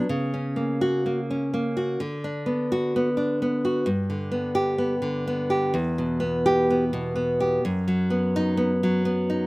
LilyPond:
\new Staff \with { instrumentName = "Nylon-string guitar" } { \time 2/4 \key g \lydian \tempo 4 = 64 << { r8. fis'8 r8. | r8. fis'8 r8. | r8. g'8 r8. | \key e \minor r8. g'8 r8. |
r8. dis'8 r8. | } \\ { cis16 cis'16 ais8 ais16 cis'16 ais16 fis'16 | d16 d'16 b8 b16 d'16 b16 fis'16 | g,16 d16 b8 b16 d16 b16 g'16 | e,16 b,16 b8 b16 b,16 b16 g'16 |
fis,16 fis16 b8 b16 fis16 b16 dis'16 | } >> }